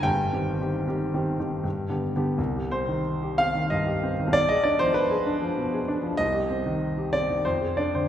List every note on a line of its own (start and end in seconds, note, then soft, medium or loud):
0.03 0.31 G1 medium
0.03 0.31 G2 medium
0.03 2.02 G5 loud
0.33 0.58 D#3 soft
0.33 0.58 C4 soft
0.33 0.58 G4 soft
0.61 0.85 D#3 soft
0.61 0.85 C4 soft
0.61 0.85 G4 soft
0.87 1.11 D#3 medium
0.87 1.11 C4 soft
0.87 1.12 G4 medium
1.14 1.37 D#3 medium
1.14 1.37 C4 medium
1.14 1.37 G4 medium
1.39 1.62 D#3 soft
1.39 1.62 C4 soft
1.39 1.62 G4 soft
1.64 1.89 G2 medium
1.89 2.12 D3 soft
1.89 2.12 B3 soft
1.89 2.13 G4 soft
2.16 2.36 D3 soft
2.16 2.36 B3 medium
2.16 2.37 G4 medium
2.38 4.30 C2 medium
2.56 2.82 G4 soft
2.71 2.99 C4 soft
2.71 3.38 C5 medium
2.88 3.42 D#3 soft
3.22 3.48 G4 soft
3.38 3.65 C4 soft
3.38 3.71 F5 loud
3.55 3.80 D#3 soft
3.70 3.96 G2 soft
3.70 4.33 D#5 medium
3.87 4.12 G4 soft
4.03 4.28 C4 medium
4.19 4.34 D#3 medium
4.27 6.10 B1 medium
4.33 4.49 D5 loud
4.49 4.74 G#4 soft
4.49 4.64 D#5 medium
4.64 4.89 D4 soft
4.64 4.79 D5 medium
4.79 5.29 F3 medium
4.79 4.95 C5 loud
4.94 5.86 B4 medium
5.11 5.35 G#4 medium
5.26 5.51 D4 medium
5.42 5.66 F3 medium
5.57 5.81 B2 medium
5.73 5.97 G#4 medium
5.88 6.12 D4 medium
6.03 6.18 F3 medium
6.17 7.42 C2 medium
6.17 7.13 D#5 loud
6.34 6.59 G4 soft
6.50 6.75 C4 medium
6.66 7.17 D#3 soft
6.98 7.23 G4 soft
7.13 7.39 C4 soft
7.13 7.45 D5 medium
7.30 7.46 D#3 soft
7.45 8.08 F2 medium
7.45 7.78 C5 medium
7.61 7.88 G#4 soft
7.77 8.05 D4 soft
7.77 7.94 D5 medium
7.95 8.08 D3 soft
7.95 8.08 C5 medium